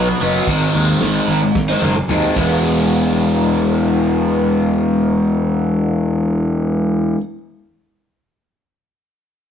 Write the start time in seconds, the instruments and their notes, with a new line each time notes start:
Already playing: fingered electric bass B1, overdriven electric guitar B2
0.09 muted overdriven electric guitar stroke
0.20 fingered electric bass F#1, overdriven electric guitar B2 F#3 B3 D#4, closed hi-hat
0.47 fingered electric bass G#1, overdriven electric guitar G#2 D#3 G#3 C4 D#4, kick, closed hi-hat
0.75 fingered electric bass D#2, overdriven electric guitar D#3 G#3 C4 D#4, closed hi-hat
1.01 fingered electric bass G#1, overdriven electric guitar G#2 D#3 G#3 C4 D#4, snare, closed hi-hat
1.28 fingered electric bass G#1, overdriven electric guitar D#3 G#3 C4 D#4, closed hi-hat
1.43 muted overdriven electric guitar stroke
1.55 fingered electric bass G#1, kick, snare
1.68 overdriven electric guitar G#3 C4 D#4
1.82 fingered electric bass F#1, overdriven electric guitar D#3 G#3 C4 D#4, high tom
1.96 muted overdriven electric guitar stroke, mid tom
2.08 fingered electric bass D#2, overdriven electric guitar G#2 D#3 G#3 C4 D#4, mid tom
2.23 floor tom
2.35 fingered electric bass E1, overdriven electric guitar E3 G#3 B3 E4, kick, crash
2.40 overdriven electric guitar G#4